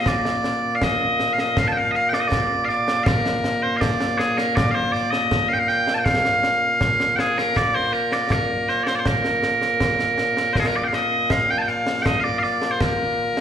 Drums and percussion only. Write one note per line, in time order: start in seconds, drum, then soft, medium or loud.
0.06 concert bass drum medium
0.06 snare loud
0.25 snare medium
0.44 snare medium
0.82 concert bass drum medium
0.82 snare medium
1.20 snare medium
1.38 snare medium
1.57 concert bass drum medium
1.57 snare medium
1.94 snare soft
2.13 snare medium
2.32 concert bass drum medium
2.32 snare loud
2.69 snare soft
2.88 snare medium
3.06 concert bass drum medium
3.06 snare loud
3.26 snare medium
3.44 snare medium
3.81 concert bass drum medium
3.81 snare loud
4.00 snare medium
4.19 snare medium
4.38 snare medium
4.57 concert bass drum medium
4.57 snare loud
4.94 snare soft
5.13 snare medium
5.31 concert bass drum medium
5.31 snare medium
5.69 snare soft
5.87 snare medium
6.06 concert bass drum medium
6.06 snare medium
6.25 snare medium
6.43 snare medium
6.81 concert bass drum medium
6.81 snare medium
7.00 snare medium
7.19 snare medium
7.38 snare medium
7.56 concert bass drum medium
7.56 snare medium
7.94 snare soft
8.12 snare medium
8.30 concert bass drum medium
8.30 snare medium
8.68 snare soft
8.87 snare medium
9.06 concert bass drum medium
9.06 snare medium
9.24 snare medium
9.43 snare medium
9.62 snare medium
9.80 concert bass drum medium
9.80 snare medium
9.99 snare medium
10.18 snare medium
10.37 snare medium
10.55 concert bass drum medium
10.55 snare medium
10.93 snare medium
11.30 concert bass drum medium
11.30 snare loud
11.67 snare soft
11.87 snare medium
12.06 concert bass drum medium
12.06 snare loud
12.43 snare soft
12.62 snare medium
12.81 concert bass drum medium
12.81 snare loud
13.37 snare medium